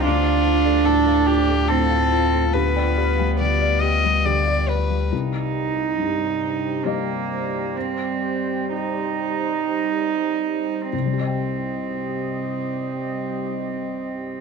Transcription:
<<
  \new Staff \with { instrumentName = "Violin" } { \time 3/4 \key c \dorian \tempo 4 = 69 f'4 a'8 g'8 a'4 | b'4 d''8 ees''8 d''8 b'8 | r2. | r2. |
r2. | }
  \new Staff \with { instrumentName = "Synth pluck" } { \time 3/4 \key c \dorian d'16 d''16 a'16 d''16 d'16 a'16 d''16 f'16 d'16 a'16 a'16 r16 | g'16 g''16 d''16 g''16 g'16 d''16 g''16 b'16 g'16 d''16 d''16 r16 | r2. | r2. |
r2. | }
  \new Staff \with { instrumentName = "Ambient pad" } { \time 3/4 \key c \dorian << { f''2.~ | f''2. | c''2.~ | c''2. |
ees''2. | } \\ { <a f'>2. | <g g'>2. | <g g'>2.~ | <g g'>2. |
<g g'>2. | } >> }
  \new Staff \with { instrumentName = "Cello" } { \time 3/4 \key c \dorian d'2 c'4 | b2~ b8 r8 | ees'2 bes4 | c'4 ees'2 |
c'2. | }
  \new Staff \with { instrumentName = "Felt piano" } { \time 3/4 \key c \dorian d,16 f''16 f'16 a16 a,16 f''16 f'16 a16 a,16 f''16 f'16 a16 | d,16 d''16 g'16 g16 d16 d''16 g'16 g16 d16 d''16 g'16 g16 | c,4 g,4 <g g' ees''>4~ | <g g' ees''>2. |
<c, c g g' ees'' g''>2. | }
  \new Staff \with { instrumentName = "Sub bass" } { \clef bass \time 3/4 \key c \dorian d,2.~ | d,2. | r2. | r2. |
r2. | }
>>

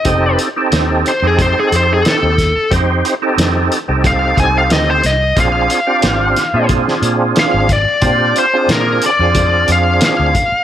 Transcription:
<<
  \new Staff \with { instrumentName = "Lead electric guitar" } { \time 4/4 \key f \mixolydian \tempo 4 = 90 ees''8 r4 c''16 aes'16 c''16 aes'16 c''16 aes'16 a'4 | r2 f''8 aes''16 f''16 ees''16 c''16 ees''8 | f''2 r4 f''8 d''8~ | d''8 c''8 bes'8 d''4 f''8 f''4 | }
  \new Staff \with { instrumentName = "Tonewheel organ" } { \time 4/4 \key f \mixolydian <c' ees' g' a'>8. <c' ees' g' a'>8. r16 <c' ees' g' a'>4.~ <c' ees' g' a'>16 r8 | <c' ees' g' c''>8. <c' ees' g' a'>8. r16 <c' ees' g' a'>4.~ <c' ees' g' a'>16 r8 | <c' d' f' aes'>8. <c' d' f' g'>8. r16 <c' d' f' aes'>4.~ <c' d' f' aes'>16 r8 | <c' d' f' g'>8. <c' d' f' aes'>8. r16 <c' d' f' aes'>4.~ <c' d' f' aes'>16 r8 | }
  \new Staff \with { instrumentName = "Fingered electric bass" } { \clef bass \time 4/4 \key f \mixolydian f,,8 r8 ees,8 r16 f,8 r16 f,8 r16 ees,8 r16 | f,8 r8 f,8 r16 c,8. c,8 d,8 c,8 | bes,,8 r8 aes,,8 r16 bes,8 r16 bes,8 r16 aes,,8 r16 | bes,8 r8 bes,8 r16 f,8. f,8 r16 d,16 r8 | }
  \new DrumStaff \with { instrumentName = "Drums" } \drummode { \time 4/4 <hh bd>8 hh8 <hh sn>8 hh8 <hh bd>8 hh8 <hh sn>8 <hh bd sn>8 | <hh bd>8 hh8 <hh sn>8 hh8 <hh bd>8 <hh bd>8 <hh sn>8 <hh sn>8 | <hh bd>8 hh8 <hh sn>8 <hh sn>8 <hh bd>16 sn16 hh8 <hh sn>8 <hh bd>8 | <hh bd>8 hh8 <hh sn>8 hh8 <hh bd>8 hh8 <hh sn>8 <hh bd>8 | }
>>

